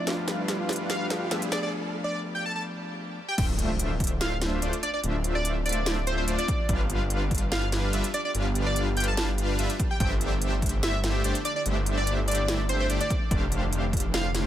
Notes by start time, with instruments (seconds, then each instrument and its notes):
Already playing: digital synth lead D5, riser
0.05 detuned saw bass G1, tine electric piano F3 A3 B3 D4, supersaw synth G3 D4 F4 B4 F5, ambient pad G4 F5 B5, snare, closed hi-hat
0.28 snare, closed hi-hat
0.48 snare, closed hi-hat
0.69 snare, closed hi-hat
0.73 closed hi-hat
0.76 closed hi-hat
0.90 digital synth lead F5, snare, closed hi-hat
1.10 snare, closed hi-hat
1.30 detuned saw bass G1, tine electric piano F3 A3 B3 D4, supersaw synth G3 D4 F4 B4 E5, snare, closed hi-hat
1.42 closed hi-hat
1.52 digital synth lead D5, snare, closed hi-hat
1.63 digital synth lead D5
2.04 digital synth lead D5
2.35 digital synth lead G5
2.46 digital synth lead A5
2.56 digital synth lead A5
3.28 digital synth lead G5
3.38 detuned saw bass D1, supersaw synth A3 D4 F4 C5 E5, ambient pad C4 F4, kick, closed hi-hat, crash, impact
3.59 closed hi-hat
3.79 closed hi-hat
4.00 kick, closed hi-hat
4.04 closed hi-hat
4.07 closed hi-hat
4.21 digital synth lead F5, snare, closed hi-hat
4.42 snare, closed hi-hat
4.62 detuned saw bass D1, supersaw synth A3 D4 F4 C5 D5, closed hi-hat
4.73 closed hi-hat
4.83 digital synth lead D5, closed hi-hat
4.94 digital synth lead D5
5.04 detuned saw bass D1, supersaw synth A3 D4 F4 C5 E5, closed hi-hat
5.24 closed hi-hat
5.35 digital synth lead D5
5.45 closed hi-hat
5.66 digital synth lead D5, closed hi-hat
5.69 closed hi-hat
5.72 closed hi-hat
5.86 snare, closed hi-hat
6.07 digital synth lead C5, closed hi-hat
6.18 digital synth lead C5
6.28 detuned saw bass D1, supersaw synth A3 D4 F4 C5 D5, closed hi-hat
6.39 digital synth lead D5, closed hi-hat
6.48 kick, closed hi-hat
6.69 detuned saw bass G1, ambient pad F3 B3 G4, supersaw synth G3 D4 F4 B4 F5, kick, closed hi-hat
6.90 closed hi-hat
7.10 closed hi-hat
7.31 kick, closed hi-hat
7.35 closed hi-hat
7.38 closed hi-hat
7.52 digital synth lead F5, snare, closed hi-hat
7.72 snare, closed hi-hat
7.93 detuned saw bass G1, supersaw synth G3 D4 F4 B4 E5, closed hi-hat
8.04 closed hi-hat
8.14 digital synth lead D5, closed hi-hat
8.25 digital synth lead D5
8.35 detuned saw bass G1, supersaw synth G3 D4 F4 B4 F5, closed hi-hat
8.55 closed hi-hat
8.66 digital synth lead D5
8.76 closed hi-hat
8.97 digital synth lead G5, closed hi-hat
9.00 closed hi-hat
9.04 closed hi-hat
9.08 digital synth lead A5
9.17 digital synth lead A5, snare, closed hi-hat
9.38 closed hi-hat
9.59 detuned saw bass G1, supersaw synth G3 D4 F4 B4 E5, closed hi-hat
9.70 closed hi-hat
9.79 ambient pad D3 A3 E4, kick, closed hi-hat
9.91 digital synth lead G5
10.00 detuned saw bass G1, supersaw synth A3 D4 G4 C5 E5, digital synth lead G5, kick, closed hi-hat
10.21 closed hi-hat
10.42 closed hi-hat
10.62 kick, closed hi-hat
10.66 closed hi-hat
10.69 closed hi-hat
10.83 digital synth lead E5, snare, closed hi-hat
11.04 snare, closed hi-hat
11.24 detuned saw bass G1, supersaw synth A3 D4 G4 C5 D5, closed hi-hat
11.35 closed hi-hat
11.45 digital synth lead D5, closed hi-hat
11.56 digital synth lead D5
11.66 detuned saw bass G1, supersaw synth A3 D4 G4 C5 E5, closed hi-hat
11.86 closed hi-hat
11.97 digital synth lead D5
12.07 closed hi-hat
12.28 digital synth lead D5, closed hi-hat
12.31 closed hi-hat
12.35 closed hi-hat
12.48 snare, closed hi-hat
12.69 digital synth lead C5, closed hi-hat
12.80 digital synth lead C5
12.90 detuned saw bass G1, supersaw synth A3 D4 G4 C5 D5, closed hi-hat
13.01 digital synth lead D5, closed hi-hat
13.10 kick, closed hi-hat
13.31 detuned saw bass F1, supersaw synth A3 D4 G4 C5 F5, ambient pad G4, kick, closed hi-hat
13.52 closed hi-hat
13.73 closed hi-hat
13.93 kick, closed hi-hat
13.97 closed hi-hat
14.00 closed hi-hat
14.14 digital synth lead F5, snare, closed hi-hat
14.35 snare, closed hi-hat